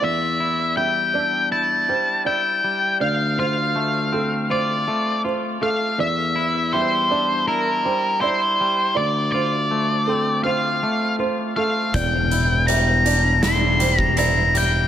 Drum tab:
HH |----------------|----------------|----------------|----------------|
SD |----------------|----------------|----------------|----------------|
BD |----------------|----------------|----------------|----------------|

HH |x-x-x-x-x-x-x-x-|
SD |--------o-------|
BD |o----------o----|